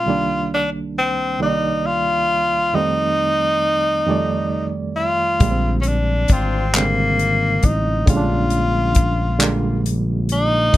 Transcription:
Already playing: F4
0.06 C2 D#3 G3 A#3 D4
0.54 D4
0.99 C4
1.39 C2 D#3 G3 A#3 D#4 D5
1.86 F4
2.73 F2 D#3 G3 A3 D#4
2.77 C4
4.06 F2 D#3 G3 A3
4.11 D5
4.97 F4
5.40 A#1 D3 G3 G#3, kick, closed hi-hat
5.44 A#3
5.51 C4
5.82 C#4, closed hi-hat
5.88 D4
6.28 G#1 C4 D4 F4, kick, closed hi-hat
6.32 C4
6.73 C3 G3 G#3 A#3, clap, closed hi-hat
6.77 D3 C4
7.19 closed hi-hat
7.63 A1 D#4, kick, closed hi-hat
8.06 A#1 D3 G3 G#3 F4, kick, closed hi-hat
8.11 C#4
8.17 D4
8.50 closed hi-hat
8.95 kick, closed hi-hat
9.39 D3 G3 G#3 A#3, clap, closed hi-hat
9.86 closed hi-hat
10.29 D#4, closed hi-hat
10.73 D#3, kick, closed hi-hat

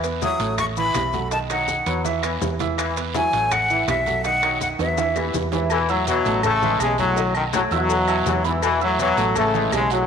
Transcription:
Already playing: E2
0.04 B3 B4, high conga, high timbale, maracas
0.22 E3 F#3 E4 E5 D#6, high bongo, high conga, low timbale, short guiro, maracas
0.40 A1 A3 A4 C#5, high conga, high timbale, short guiro, maracas
0.58 C#6, high bongo, high conga, low conga, high timbale, long guiro, claves, maracas
0.77 E3 E4 E5 B5, high conga, maracas
0.94 B1, high bongo, low bongo, high conga, high timbale, low timbale, short guiro, claves, maracas
1.13 F#3 F#4 A4, high conga, short guiro, maracas
1.31 D#3 D#4 D#5 A5, high bongo, high conga, high timbale, long guiro, maracas
1.50 D#3 F#3 D#4 D#5 F#5, high bongo, high conga, high timbale, claves, maracas
1.68 high bongo, high conga, low timbale, short guiro, maracas
1.86 E2 F#3 B3 B4, high bongo, high timbale, short guiro, maracas
2.05 E3 E4 E5, high bongo, long guiro, maracas
2.23 E3 B3 B4, high bongo, high conga, high timbale, claves, maracas
2.41 E2, high bongo, low bongo, high conga, low timbale, short guiro, maracas
2.59 E3 E4 E5, high conga, high timbale, short guiro, maracas
2.77 E3, high bongo, high conga, high timbale, long guiro, claves, maracas
2.97 B3 B4, high conga, high timbale, maracas
3.14 E3 F#3 E4 E5 G#5, high bongo, high conga, low timbale, short guiro, maracas
3.33 A1 A3 A4 C#5, high conga, high timbale, short guiro, maracas
3.51 F#5, high bongo, high conga, low conga, high timbale, long guiro, claves, maracas
3.70 E3 E4 E5, maracas
3.88 B1 E5, high bongo, low bongo, high conga, high timbale, low timbale, short guiro, claves, maracas
4.06 F#3 F#4 A4, high conga, short guiro, maracas
4.24 D#3 D#4 D#5 F#5, high bongo, high conga, high timbale, long guiro, maracas
4.43 D#3 F#3 D#4 D#5, high bongo, high conga, high timbale, claves
4.61 F#5, high bongo, high conga, low timbale, short guiro, maracas
4.79 E2 F#3 B3 B4 E5, high bongo, high timbale, short guiro, maracas
4.97 E3 E4 E5, high bongo, high timbale, long guiro, maracas
5.16 E3 B3 B4, high bongo, high conga, low timbale, claves, maracas
5.34 E2, low bongo, high conga, low timbale, short guiro, maracas
5.52 G#2 E3 E4 E5, low bongo, low timbale, short guiro, maracas
5.70 B2 E3, cowbell, low agogo, long guiro, claves, maracas
5.89 A2 F#3 E4 E5 E6, high conga, maracas
6.07 B2 E3 F#3, cowbell, high conga, low timbale, low agogo, short guiro, maracas
6.25 A1 A3 A4 A5, cowbell, short guiro, maracas
6.43 C#3 E3 A3, cowbell, high conga, low conga, low agogo, long guiro, claves, maracas
6.62 E3 G#3 E4 E5, high conga, low conga, maracas
6.80 B1 C#3 G#3, cowbell, low timbale, low agogo, short guiro, claves, maracas
6.98 A2 F#3 F#4 F#5, high conga, low agogo, short guiro, maracas
7.16 D#3 D#4 D#5, cowbell, long guiro, maracas
7.35 F#2 D#3, high conga, low agogo, claves, maracas
7.53 A2 F#3 A3 A4 A5, cowbell, high conga, low timbale, low agogo, short guiro, maracas
7.71 E2 B2 F#3 E4 E5 E6, cowbell, short guiro, maracas
7.89 cowbell, high conga, low agogo, long guiro, maracas
8.08 E4 E5 E6, high conga, low agogo, claves, maracas
8.26 E2 E3, cowbell, high conga, low timbale, short guiro, maracas
8.44 G#2 E3 B3 B4 B5, high conga, short guiro, maracas
8.62 B2 E3, cowbell, high conga, low agogo, long guiro, claves, maracas
8.81 A2 F#3 E4 E5 E6, high conga, maracas
8.99 B2 E3 F#3, cowbell, high conga, low timbale, low agogo, short guiro, maracas
9.17 A1 A3 A4 A5, cowbell, short guiro, maracas
9.35 C#3 E3 A3, cowbell, high conga, low conga, low agogo, long guiro, claves, maracas
9.53 E3 G#3 E4 E5, maracas
9.72 B1 C#3 G#3, cowbell, high conga, low timbale, low agogo, short guiro, claves, maracas
9.90 A2 F#3 F#4 F#5, low agogo, short guiro, maracas

